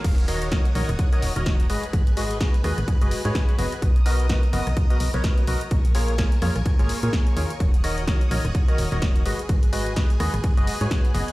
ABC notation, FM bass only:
X:1
M:4/4
L:1/16
Q:"Swing 16ths" 1/4=127
K:Ebm
V:1 name="FM bass" clef=bass
E,,,4 z2 B,,, E,,, z2 E,,, E,,,3 A,,, z | A,,,4 z2 E,, A,,, z G,,, z A,, z2 G,,, z | =B,,,4 z2 ^F,,, B,,, z2 B,,, B,,, z2 B,,, z | B,,,4 z2 F,, B,,, z A,,, z B,, z2 E,, z |
E,,,4 z2 B,,, E,,, z2 E,,, E,,,3 A,,, z | A,,,4 z2 E,, A,,, z G,,, z A,, z2 G,,, z |]